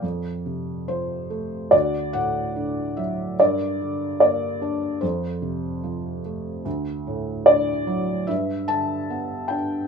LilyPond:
<<
  \new Staff \with { instrumentName = "Felt piano" } { \time 4/4 \key f \major \tempo 4 = 73 << { r4 c''4 d''8 fis''4 e''8 | d''4 d''4 c''4. r8 | r4 d''4 e''8 a''4 g''8 | } \\ { r2 fis'2 | bes'2 a'2 | r2 b'2 | } >> }
  \new Staff \with { instrumentName = "Felt piano" } { \clef bass \time 4/4 \key f \major f,8 c8 f8 a8 d,8 a,8 d8 fis8 | g,8 d8 bes8 d'8 f,8 c8 f8 a8 | d,8 a,8 d8 fis8 g,8 d8 b8 d'8 | }
>>